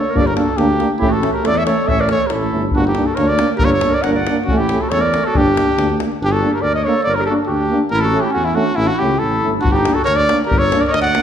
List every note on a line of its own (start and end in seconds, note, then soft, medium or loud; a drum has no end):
0.00 0.12 A4 medium
0.00 0.18 C#5 medium
0.10 0.38 G1 loud
0.10 0.23 A#4 medium
0.15 0.24 A#3 medium
0.15 0.24 D4 medium
0.15 0.28 D5 loud
0.15 davul low medium
0.22 0.33 G4 medium
0.26 0.36 A#4 medium
0.26 davul high soft
0.34 0.45 A#3 medium
0.34 0.44 D4 medium
0.34 0.55 F#4 medium
0.34 0.58 A4 medium
0.34 davul high medium
0.53 0.89 D4 medium
0.53 0.91 G4 medium
0.58 0.82 D2 loud
0.58 0.67 A#3 medium
0.58 0.67 D4 medium
0.58 davul high medium
0.71 davul high soft
0.79 0.88 A#3 medium
0.79 0.88 D4 medium
0.79 davul high medium
0.98 1.25 A1 medium
0.98 1.09 A3 medium
0.98 1.08 C#4 medium
0.98 1.10 E4 medium
0.98 1.14 G4 medium
0.98 davul low medium
1.09 1.32 F#4 medium
1.09 1.33 A4 medium
1.14 davul high soft
1.22 1.31 A3 medium
1.22 1.31 C#4 medium
1.22 davul high medium
1.32 1.46 G4 medium
1.32 1.48 A#4 medium
1.43 1.70 E2 medium
1.43 1.52 A3 medium
1.43 1.53 C#4 medium
1.43 1.57 A4 medium
1.43 1.59 D5 loud
1.43 davul high medium
1.55 1.66 C#5 medium
1.55 1.65 E5 loud
1.55 davul high soft
1.66 1.76 A3 medium
1.66 1.74 C#4 medium
1.66 1.91 A4 medium
1.66 1.89 C#5 medium
1.66 davul high medium
1.86 2.12 A1 medium
1.86 1.95 A3 medium
1.86 1.95 C#4 medium
1.86 2.02 C#5 loud
1.86 2.02 E5 loud
1.86 davul low medium
2.00 2.10 A#4 medium
2.00 2.10 D5 medium
2.00 davul high soft
2.08 2.19 A3 medium
2.08 2.17 C#4 medium
2.08 2.28 A4 medium
2.08 2.28 C#5 loud
2.08 davul high medium
2.21 davul high soft
2.26 2.39 C#4 medium
2.26 2.64 E4 medium
2.26 2.32 G4 medium
2.26 2.33 A#4 medium
2.26 davul high medium
2.32 2.51 A1 medium
2.32 2.42 A3 medium
2.32 2.65 A4 medium
2.41 davul high soft
2.51 2.73 G1 medium
2.51 2.61 A3 medium
2.51 2.60 C#4 medium
2.62 davul high soft
2.71 2.98 G1 loud
2.71 2.85 D4 medium
2.71 2.83 D4 medium
2.71 davul low medium
2.75 2.84 A#3 medium
2.75 2.86 F#4 medium
2.85 3.08 D#4 medium
2.85 3.08 G4 medium
2.85 davul high soft
2.95 3.05 D4 medium
2.95 davul high medium
2.99 3.07 A#3 medium
3.06 3.15 F#4 medium
3.06 3.17 A4 medium
3.13 3.41 D2 medium
3.13 3.25 A#3 medium
3.13 3.24 A#4 medium
3.13 3.30 C#5 loud
3.13 davul high medium
3.19 3.28 D4 medium
3.24 3.48 A#4 medium
3.28 3.50 D5 medium
3.28 davul high soft
3.38 3.48 A#3 medium
3.38 3.47 D4 medium
3.38 davul high medium
3.57 3.84 G1 loud
3.57 3.69 A#3 medium
3.57 3.61 G4 medium
3.57 3.63 A4 medium
3.57 3.66 A#4 loud
3.57 davul low loud
3.61 3.70 D4 medium
3.61 3.70 G4 medium
3.61 3.72 C#5 loud
3.69 3.92 A4 medium
3.69 3.95 C#5 medium
3.69 davul high soft
3.81 3.93 A#3 medium
3.81 3.92 D4 medium
3.81 davul high medium
3.90 4.02 A#4 medium
3.90 4.03 D5 medium
4.00 4.28 G1 medium
4.00 4.12 D4 medium
4.00 4.17 A#4 medium
4.00 4.04 D5 medium
4.00 4.14 F#5 medium
4.00 davul high medium
4.08 4.16 A#3 medium
4.14 4.37 D5 medium
4.14 4.36 F#5 medium
4.14 davul high soft
4.27 4.35 D4 medium
4.27 davul high medium
4.31 4.39 A#3 medium
4.44 4.71 A1 medium
4.44 4.55 C#4 medium
4.44 4.61 C#4 medium
4.44 4.59 F#4 loud
4.48 4.59 A3 medium
4.48 davul low medium
4.58 4.84 E4 medium
4.58 4.82 G4 medium
4.69 4.80 A3 medium
4.69 4.78 C#4 medium
4.69 davul high medium
4.81 4.92 F#4 medium
4.81 4.91 A4 medium
4.89 5.15 E2 medium
4.89 5.01 C#4 medium
4.89 5.02 A4 medium
4.89 5.03 C#5 loud
4.89 davul high medium
4.95 5.03 A3 medium
5.00 5.28 A#4 medium
5.00 5.26 D5 medium
5.00 davul high soft
5.12 5.23 A3 medium
5.12 5.21 C#4 medium
5.12 davul high medium
5.25 5.40 F#4 medium
5.25 5.38 A4 medium
5.34 5.58 G1 loud
5.34 5.44 A#3 medium
5.34 5.43 D4 medium
5.34 6.00 G4 medium
5.34 davul low loud
5.38 6.01 D4 medium
5.46 davul high soft
5.57 5.67 A#3 soft
5.57 5.66 D4 medium
5.57 davul high medium
5.77 6.01 D2 medium
5.77 5.89 A#3 medium
5.77 5.87 D4 medium
5.77 davul high medium
5.90 davul high soft
5.99 6.07 D4 medium
5.99 davul high medium
6.03 6.11 A#3 medium
6.12 davul high soft
6.21 6.44 G1 loud
6.21 6.32 D4 medium
6.21 6.33 G4 loud
6.30 6.50 F#4 medium
6.30 6.53 A4 medium
6.42 6.52 A#3 medium
6.42 6.50 D4 medium
6.51 6.64 G4 medium
6.51 6.63 A#4 medium
6.61 6.86 D2 medium
6.61 6.75 A#4 medium
6.61 6.74 D5 loud
6.75 6.89 C#5 medium
6.75 6.86 D#5 medium
6.84 6.95 A#3 medium
6.84 6.94 D4 medium
6.84 7.08 A4 medium
6.84 7.03 C#5 loud
7.03 7.30 G1 medium
7.03 7.17 D5 loud
7.09 7.22 A#4 medium
7.15 7.25 A#4 medium
7.21 7.28 G4 medium
7.26 7.37 A#3 medium
7.26 7.37 D4 medium
7.26 7.35 F#4 medium
7.26 7.33 A4 medium
7.43 7.81 G4 medium
7.43 7.48 A4 medium
7.47 7.72 D2 medium
7.47 7.83 D4 medium
7.47 7.52 F#4 medium
7.70 7.79 A#3 medium
7.70 7.80 D4 medium
7.90 8.15 A1 loud
7.90 8.06 E4 medium
7.90 8.02 A#4 loud
8.01 8.27 F#4 medium
8.01 8.23 A4 medium
8.13 8.22 A3 medium
8.13 8.22 C#4 medium
8.21 8.32 G4 medium
8.25 8.29 E4 medium
8.30 8.45 C#4 medium
8.30 8.46 F#4 medium
8.35 8.59 E2 medium
8.45 8.55 C#4 medium
8.45 8.57 E4 medium
8.54 8.64 A3 medium
8.54 8.65 C#4 medium
8.54 8.76 D4 medium
8.54 8.77 F#4 medium
8.75 8.89 A1 loud
8.75 8.85 C#4 medium
8.75 8.89 E4 loud
8.84 8.97 D4 medium
8.84 9.01 F#4 loud
8.95 9.08 C#4 medium
8.95 9.16 E4 medium
8.99 9.20 C#2 medium
8.99 9.10 A3 medium
8.99 9.20 G4 medium
9.16 9.52 E4 medium
9.16 9.53 A4 medium
9.22 9.41 A1 medium
9.43 9.62 G1 medium
9.43 9.52 A3 medium
9.43 9.52 C#4 soft
9.59 9.77 D4 medium
9.59 9.74 F#4 loud
9.64 9.88 G1 loud
9.64 davul low loud
9.72 9.97 D#4 medium
9.72 9.95 G4 medium
9.77 davul high soft
9.85 9.95 A#3 soft
9.85 9.95 D4 medium
9.85 davul high medium
9.94 10.04 F#4 medium
9.94 10.04 A4 medium
10.05 10.31 D2 medium
10.05 10.17 A#4 medium
10.05 10.18 C#5 loud
10.05 davul high medium
10.16 10.40 A#4 medium
10.16 10.39 D5 loud
10.16 davul high soft
10.29 10.39 A#3 medium
10.29 10.39 D4 medium
10.29 davul high medium
10.46 10.74 G1 loud
10.46 10.60 G4 medium
10.46 10.60 A#4 loud
10.51 davul low loud
10.58 10.81 A4 medium
10.58 10.83 C#5 loud
10.63 davul high soft
10.72 10.80 A#3 medium
10.72 10.81 D4 medium
10.72 davul high medium
10.79 10.86 A#4 medium
10.79 10.86 D5 medium
10.86 10.90 A#4 medium
10.86 10.93 C#5 medium
10.86 10.89 D5 medium
10.90 11.17 D2 medium
10.90 11.00 A#4 medium
10.90 11.01 D#5 loud
10.94 davul high medium
11.01 11.22 D5 medium
11.01 11.22 F#5 loud
11.15 11.22 A#3 medium
11.15 11.22 D4 medium
11.15 davul high medium